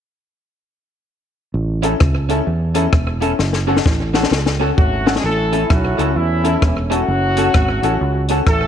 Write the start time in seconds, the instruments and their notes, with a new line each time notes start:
1.54 fingered electric bass A1
1.82 clean electric guitar C#4 E4 A4, upright piano C#4 E4 A4, closed hi-hat
2.00 fingered electric bass C#2, kick, cross-stick
2.29 clean electric guitar C#4 E4 A4, upright piano C#4 E4 A4, closed hi-hat
2.47 fingered electric bass E2
2.74 upright piano C#4 E4 A4, clean electric guitar C#4 E4 A4, closed hi-hat
2.92 fingered electric bass E1, kick, cross-stick
3.20 upright piano C#4 E4 A4, clean electric guitar C#4 E4 A4, closed hi-hat
3.39 fingered electric bass F#1, snare
3.53 snare
3.67 upright piano C#4 F#4 A4, clean electric guitar C#4 F#4 A4
3.77 snare
3.86 fingered electric bass A1, kick, snare
4.13 upright piano C#4 F#4 A4, clean electric guitar C#4 F#4 A4, snare
4.23 snare
4.31 fingered electric bass C#2, snare
4.46 snare
4.59 clean electric guitar C#4 F#4 A4, upright piano C#4 F#4 A4
4.78 fingered electric bass G#1, horn section F#3 A3 C#4 F#4, kick
5.06 upright piano C#4 F#4 A4, clean electric guitar C#4 F#4 A4, snare
5.16 horn section G#3 G#4, snare
5.24 fingered electric bass A1, horn section A3 C#4 E4 A4
5.52 upright piano C#4 E4 A4, clean electric guitar C#4 E4 A4, closed hi-hat
5.70 fingered electric bass B1, horn section F#3 A3 C#4 F#4, upright piano E4 A4, muted clean electric guitar stroke, kick, cross-stick
5.97 fingered electric bass C#2, upright piano C#4 E4 A4, clean electric guitar C#4 E4 A4, closed hi-hat
6.16 fingered electric bass E2, horn section E3 A3 C#4 E4
6.44 upright piano C#4 E4 A4, clean electric guitar C#4 E4 A4, closed hi-hat
6.62 fingered electric bass E1, horn section E3 E4, kick, cross-stick
6.90 horn section F#3 A3 C#4 F#4, upright piano C#4 E4 A4, clean electric guitar C#4 E4 A4, closed hi-hat
7.08 fingered electric bass F#1
7.37 upright piano C#4 F#4 A4, clean electric guitar C#4 F#4 A4, closed hi-hat
7.54 fingered electric bass G#1, kick, cross-stick
7.82 fingered electric bass A1, upright piano C#4 F#4 A4, clean electric guitar C#4 F#4 A4, closed hi-hat
8.01 fingered electric bass C#2
8.28 upright piano C#4 F#4 A4, clean electric guitar C#4 F#4 A4, closed hi-hat
8.46 fingered electric bass A1, horn section A3 C#4 F#4 A4, kick, cross-stick